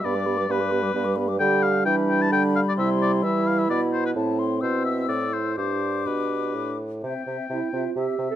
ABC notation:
X:1
M:3/4
L:1/16
Q:1/4=130
K:G
V:1 name="Flute"
b d' b d' b d' b d' b d' b d' | [K:C] b4 b8 | c'4 b8 | a2 c'2 e'8 |
d'8- d'2 z2 | e2 e2 e2 e2 e2 e2 |]
V:2 name="Oboe"
d4 B6 z2 | [K:C] g2 f2 g2 g a g2 f d | e2 d2 e2 f e d2 c B | z4 c2 e2 d2 c2 |
c4 B6 z2 | g8 e4 |]
V:3 name="Clarinet"
G B G B G B G B G B G B | [K:C] G4 D8 | E4 E8 | E4 E8 |
G8- G2 z2 | z4 E2 F2 G3 A |]
V:4 name="French horn"
B, G, B, G, B, G, B, G, B, G, B, G, | [K:C] G,12- | G,8 B,4 | C12 |
D8- D2 z2 | C2 C2 C2 C2 C2 C2 |]
V:5 name="Bassoon" clef=bass
G,,4 G,,4 G,,4 | [K:C] D,4 E,4 D,4 | C,4 E,4 B,,4 | A,,4 B,,4 A,,4 |
G,,4 B,,4 A,,4 | C,2 C,2 C,2 C,2 C,2 C,2 |]